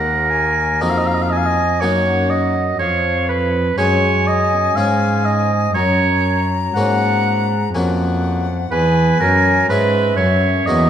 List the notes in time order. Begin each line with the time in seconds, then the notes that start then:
Already playing: D#2 A#4 F#5
0.30 G#5
0.81 F2 A#3 D#4 F#4 D#5 A#5
0.90 F5
0.97 D#5
1.06 F5
1.14 D#5
1.22 F5
1.30 D#5 G#5
1.37 F5
1.45 D#5
1.81 F#2 A#3 D#4 F#4 C#5 G#5
1.85 F#5
2.30 D#5
2.80 F2 C#5 F5
3.29 B4
3.78 F#2 G#3 C#4 G#4 C#5 G#5
4.27 D#5
4.76 G#2 G#3 C#4 G#4 F5
5.25 D#5
5.75 F#2 C#5 A#5
6.75 G#2 A#3 C#4 F#4 F#5
7.74 F2 A#3 C#4 F#4 F#5 G#5
8.72 E2 B4 G#5
9.20 F#2 A#4
9.69 G#2 G#3 C#4 G#4 B4 E5
10.17 F#2 C#5
10.66 E2 A#3 C#4 F#4 D#5